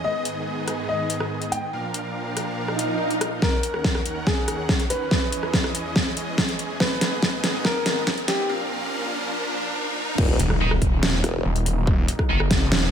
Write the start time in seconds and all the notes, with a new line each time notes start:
Already playing: D#5
0.04 G#2 D#3 B3 G#4 D#5
0.25 closed hi-hat
0.68 cross-stick, closed hi-hat
0.89 D#5
1.10 closed hi-hat
1.20 cross-stick
1.42 closed hi-hat
1.52 G5, closed hi-hat
1.73 A#2 F3 D4 A#4 F5
1.94 closed hi-hat
2.37 cross-stick, closed hi-hat
2.58 swell
2.68 cross-stick
2.79 closed hi-hat
3.11 closed hi-hat
3.21 cross-stick, closed hi-hat
3.42 D#2 D#3 C#4 A#4 F#5, kick, snare, riser
3.63 closed hi-hat
3.74 cross-stick
3.84 kick, snare
3.95 cross-stick
4.06 closed hi-hat
4.27 G#4, kick, snare
4.48 cross-stick, closed hi-hat
4.69 kick, snare
4.80 closed hi-hat
4.90 B4, closed hi-hat
5.11 E2 E3 G#4 D#5, kick, snare
5.32 closed hi-hat
5.43 cross-stick
5.53 kick, snare
5.64 cross-stick
5.75 closed hi-hat
5.96 kick, snare
6.17 closed hi-hat
6.38 kick, snare
6.49 closed hi-hat
6.59 closed hi-hat
6.80 G#2 D#3 B3 B4 D#5, kick, snare
7.01 snare, closed hi-hat
7.22 kick, snare
7.44 snare, closed hi-hat
7.65 A#4, kick, snare
7.86 snare, closed hi-hat
8.07 kick, snare
8.18 closed hi-hat
8.28 G4, snare, closed hi-hat
8.49 A#2 F3 D4 A#4 F5
10.18 D#1 F#3 A#3 D#4, kick, crash, impact
10.39 D#1, closed hi-hat
10.50 cross-stick
10.60 D#4 A#4 D#5
10.71 cross-stick
10.82 D#1, kick, open hi-hat
11.03 snare
11.24 E1, cross-stick, closed hi-hat
11.45 D#1
11.56 closed hi-hat
11.66 open hi-hat
11.87 kick
12.08 closed hi-hat
12.19 kick, cross-stick
12.29 F#1 D#4 A#4 D#5
12.40 cross-stick
12.51 kick, snare, open hi-hat
12.72 D#1, snare